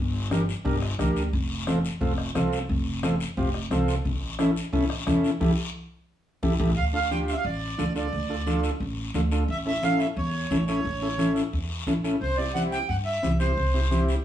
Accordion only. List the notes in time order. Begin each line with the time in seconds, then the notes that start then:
6.77 F5
6.95 F5
7.11 G5
7.29 E5 F5
7.37 F5
7.46 D5
7.97 D5
9.50 E5
9.67 E5
9.84 F5
10.00 E5
10.17 C#5
10.68 C#5
12.22 C5
12.37 D5
12.55 F#5
12.72 G5
12.89 F#5
13.05 E5
13.40 C5